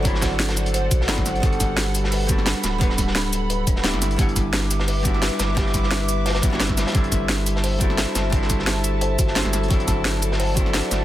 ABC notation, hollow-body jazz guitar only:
X:1
M:4/4
L:1/16
Q:"Swing 16ths" 1/4=174
K:G
V:1 name="Hollow-body jazz guitar"
[F,CDEb]12 [F,CDEb]4 | [G,B,DAf]8- [G,B,DAf]2 [G,B,DFA]6 | [G,B,DBf]12 [G,B,DEG]4 | [G,B,DEf]8- [G,B,DEf]2 [G,B,DEF]6 |
[G,B,DEG]8- [G,B,DEG]2 [G,B,DEF] [G,B,DEF]4- [G,B,DEF] | [G,CDEA]8- [G,CDEA]2 [G,CDEA]6 | [G,CDEc]12 [G,CDEc]4 | [F,CDEA]8- [F,CDEA]2 [F,CDEA]6 |]